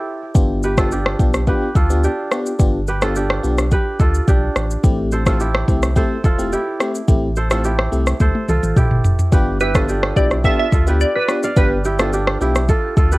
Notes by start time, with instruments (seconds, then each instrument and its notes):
Already playing: kora E4 G4 A4 C5
0.35 sub bass G1, fm electric piano B3 D4 F4 G4, kick, shaker
0.63 kora G4 B4, shaker
0.78 fm electric piano B3 D4 F4 G4, kora F4 A4, kick, cross-stick, shaker
0.92 kora D4 G4, shaker
1.06 cross-stick
1.19 sub bass B1, fm electric piano B3 D4 F4 G4, kick, shaker
1.34 cross-stick, shaker
1.47 fm electric piano B3 D4 F4 G4, kora G4 B4, kick, shaker
1.75 sub bass D2, kora F4 A4, kick, shaker
1.90 fm electric piano B3 D4 F4 G4, shaker
2.04 kora D4 G4, shaker
2.31 fm electric piano B3 D4 F4 G4, cross-stick, shaker
2.46 shaker
2.59 sub bass G1, fm electric piano B3 D4 F4 G4, kick, shaker
2.87 kora G4 B4, shaker
3.02 fm electric piano B3 D4 F4 G4, kora F4 A4, cross-stick, shaker
3.16 kora D4 G4, shaker
3.30 cross-stick
3.43 sub bass B1, fm electric piano B3 D4 F4 G4, shaker
3.58 cross-stick, shaker
3.71 kora G4 B4, kick, shaker
4.00 sub bass D2, kora F4 A4, kick, shaker
4.14 shaker
4.28 sub bass B1, kora D4 G4, kick, shaker
4.56 sub bass A1, cross-stick, shaker
4.71 shaker
4.83 sub bass A1, fm electric piano A3 C4 E4 G4, kick, shaker
5.12 kora A4 C5, shaker
5.26 fm electric piano A3 C4 E4 G4, kora F4 A4, kick, cross-stick, shaker
5.40 kora E4 G4, shaker
5.55 cross-stick
5.68 sub bass C2, fm electric piano A3 C4 E4 G4, kick, shaker
5.83 cross-stick, shaker
5.96 fm electric piano A3 C4 E4 G4, kora A4 C5, kick, shaker
6.24 sub bass E1, kora F4 A4, kick, shaker
6.38 fm electric piano A3 C4 E4 G4, shaker
6.53 kora E4 G4, shaker
6.80 fm electric piano A3 C4 E4 G4, cross-stick, shaker
6.95 shaker
7.08 sub bass A1, fm electric piano A3 C4 E4 G4, kick, shaker
7.36 kora A4 C5, shaker
7.50 fm electric piano A3 C4 E4 G4, kora F4 A4, cross-stick, shaker
7.64 kora E4 G4, shaker
7.79 cross-stick
7.92 sub bass C2, fm electric piano A3 C4 E4 G4, shaker
8.07 cross-stick, shaker
8.20 sub bass D2, kora A4 C5, kick, high tom, shaker
8.35 high tom
8.48 sub bass C2, kora F4 A4, mid tom, shaker
8.63 sub bass A1, mid tom, shaker
8.76 kora E4 G4, kick, mid tom, shaker
8.91 sub bass G1, mid tom
9.04 sub bass F1, floor tom, shaker
9.19 floor tom, shaker
9.32 sub bass G1, fm electric piano B3 D4 F4 G4, kora G4 B4, kick, shaker
9.60 kora E4 G4, synth pluck B4, shaker
9.75 fm electric piano B3 D4 F4 G4, kora F4 A4, kick, cross-stick, shaker
9.89 kora D4 G4, shaker
10.03 cross-stick
10.16 sub bass B1, fm electric piano B3 D4 F4 G4, kora E4 G4, synth pluck D5, kick, shaker
10.31 cross-stick, shaker
10.44 fm electric piano B3 D4 F4 G4, kora F4 A4, synth pluck E5, kick, shaker
10.60 synth pluck E5
10.72 sub bass D2, kora F4 A4, kick, shaker
10.87 fm electric piano B3 D4 F4 G4, kora G4 B4, shaker
11.01 synth pluck D5, shaker
11.15 synth pluck B4, kora B4 D5
11.28 fm electric piano B3 D4 F4 G4, cross-stick, shaker
11.43 kora D5 F5, shaker
11.56 sub bass G1, fm electric piano B3 D4 F4 G4, kora G4 B4, synth pluck B4, kick, shaker
11.84 kora E4 G4, shaker
11.99 fm electric piano B3 D4 F4 G4, kora F4 A4, cross-stick, shaker
12.13 kora D4 G4, shaker
12.27 cross-stick
12.41 sub bass B1, fm electric piano B3 D4 F4 G4, kora E4 G4, shaker
12.55 cross-stick, shaker
12.69 kora F4 A4, kick, shaker
12.97 sub bass D2, kora F4 A4, kick, shaker
13.12 kora G4 B4, shaker